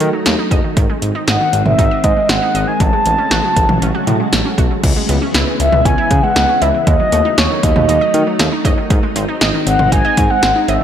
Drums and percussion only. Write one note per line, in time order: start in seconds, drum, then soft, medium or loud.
0.00 closed hi-hat medium
0.26 snare loud
0.26 closed hi-hat medium
0.51 kick medium
0.51 closed hi-hat medium
0.77 kick loud
0.77 closed hi-hat medium
1.02 closed hi-hat medium
1.28 snare loud
1.28 closed hi-hat medium
1.53 closed hi-hat medium
1.66 mid tom loud
1.79 kick medium
1.79 closed hi-hat medium
2.04 kick medium
2.04 closed hi-hat medium
2.29 snare loud
2.29 closed hi-hat medium
2.55 closed hi-hat medium
2.80 kick loud
2.80 closed hi-hat medium
3.06 closed hi-hat medium
3.31 snare loud
3.31 closed hi-hat medium
3.56 kick medium
3.56 closed hi-hat medium
3.69 mid tom loud
3.82 closed hi-hat medium
4.07 closed hi-hat medium
4.07 mid tom medium
4.33 snare loud
4.33 closed hi-hat medium
4.58 kick medium
4.58 closed hi-hat medium
4.84 kick loud
4.84 closed hi-hat medium
4.84 crash loud
5.09 closed hi-hat medium
5.34 snare loud
5.34 closed hi-hat medium
5.60 closed hi-hat medium
5.72 mid tom loud
5.85 kick medium
5.85 closed hi-hat medium
6.11 kick medium
6.11 closed hi-hat medium
6.36 snare loud
6.36 closed hi-hat medium
6.62 closed hi-hat medium
6.62 cowbell medium
6.87 kick loud
6.87 closed hi-hat medium
7.12 closed hi-hat medium
7.38 snare loud
7.38 closed hi-hat medium
7.63 kick medium
7.63 closed hi-hat medium
7.76 mid tom loud
7.89 closed hi-hat medium
8.14 closed hi-hat medium
8.39 snare loud
8.39 closed hi-hat medium
8.65 kick loud
8.65 closed hi-hat medium
8.65 cowbell medium
8.90 kick loud
8.90 closed hi-hat medium
9.16 closed hi-hat medium
9.41 snare loud
9.41 closed hi-hat medium
9.67 closed hi-hat medium
9.79 mid tom loud
9.92 kick medium
9.92 closed hi-hat medium
10.17 kick loud
10.17 closed hi-hat medium
10.43 snare loud
10.43 closed hi-hat medium
10.68 closed hi-hat medium
10.68 cowbell medium